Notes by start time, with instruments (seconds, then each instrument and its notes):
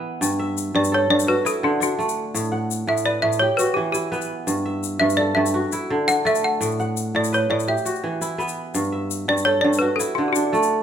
Already playing: kora E3 B3 E4 G4 B4 F#5
0.21 kora G2, shaker
0.39 kora E5
0.57 shaker
0.75 kora G2, balafon D5
0.84 shaker
0.92 kora A4, balafon C#5
1.10 kora G2, balafon D5
1.19 shaker
1.27 kora F#4, balafon B4
1.45 kora E4, balafon A4, shaker
1.63 kora D3, balafon F#4
1.80 kora D4, balafon F#4, shaker
1.99 kora A3, shaker
2.09 shaker
2.34 kora A2, shaker
2.44 shaker
2.52 kora F#5
2.71 shaker
2.87 kora A2, balafon E5
2.97 shaker
3.05 kora B4, balafon D5
3.22 kora A2, balafon E5
3.32 shaker
3.39 kora G4, balafon C#5
3.57 kora F#4, balafon B4, shaker
3.74 kora E3, balafon G4
3.92 kora E4, balafon G4, shaker
4.12 kora B3 B4, shaker
4.21 shaker
4.47 kora G2, shaker
4.65 kora E5
4.83 shaker
5.00 kora G2, balafon E5
5.10 shaker
5.17 kora A4, balafon D5
5.35 kora G2, balafon E5
5.46 shaker
5.54 kora F#4
5.72 kora E4, shaker
5.90 kora D3
6.08 kora D4, balafon F#5, shaker
6.25 kora A3 A4, balafon E5, shaker
6.35 shaker
6.44 balafon F#5
6.61 kora A2, shaker
6.71 shaker
6.79 kora F#5, shaker
6.97 shaker
7.15 kora A2, balafon D5
7.24 shaker
7.33 kora B4, balafon C#5, shaker
7.50 kora A2, balafon D5
7.60 shaker
7.68 kora G4, balafon E5
7.77 shaker
7.85 kora F#4, shaker
7.95 shaker
8.04 kora E3
8.21 kora E4, shaker
8.38 kora B3 B4, shaker
8.48 shaker
8.74 kora G2, shaker
8.92 kora E5
9.11 shaker
9.28 kora G2, balafon D5
9.37 shaker
9.45 kora A4, balafon C#5
9.61 kora G2, balafon D5
9.73 shaker
9.79 kora F#4, balafon B4
9.96 kora E4, balafon A4
10.00 shaker
10.15 kora D3, balafon F#4
10.28 balafon G4
10.33 kora D4, balafon F#4, shaker
10.52 kora A3 A4, shaker
10.63 shaker